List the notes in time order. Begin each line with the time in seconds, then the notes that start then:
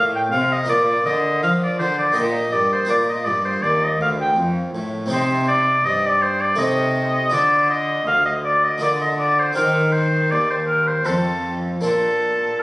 Already playing: A2 D#4 G4
0.16 G5
0.31 C3 F5
0.53 D#5
0.64 A#3 F4 A#4
0.69 A#2 D5
1.06 D3 D#5
1.43 F3 F5
1.63 D5
1.79 D3 C5
1.98 D5
2.12 A#3 G4 A#4 D#5
2.17 A#2
2.53 G2 D5
2.73 C5
2.85 A#3 F4 A#4
2.89 A#2 D5
3.09 D#5
3.25 G2 D5
3.45 C5
3.62 D#2 D5
3.84 D#5
4.00 D2 F5
4.21 G5
4.36 F2
4.74 A2
5.06 C3 C4 D#4 G4
5.11 C3 C5
5.48 D5
5.85 G2 D#5
6.06 D5
6.22 C5
6.41 D5
6.55 A3 D#4 A4 D#5
6.60 C3
7.30 D4 F4 A4 D5
7.34 D3
7.70 D#5
8.07 D2 F5
8.26 D#5
8.45 D5
8.64 D#5
8.78 D4 F4 A#4
8.82 D3 D5
9.01 D#5
9.19 D5
9.40 C5
9.53 C4 D#4 G4 A#4
9.57 D#3
9.92 C5
10.31 D#2 D5
10.50 C5
10.67 A#4
10.87 C5
11.05 F2 C4 F4 A4
11.81 A#2 A#3 D4 F4 A4